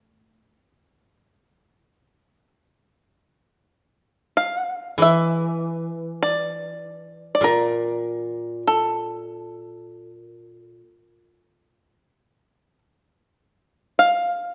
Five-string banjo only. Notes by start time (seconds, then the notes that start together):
Already playing: A4
4.37 F5
5.02 E5
6.23 D5
7.35 D5
7.44 A#4
8.67 A4
10.16 A#4
10.47 A4
10.99 A#4
11.29 A4
13.99 F5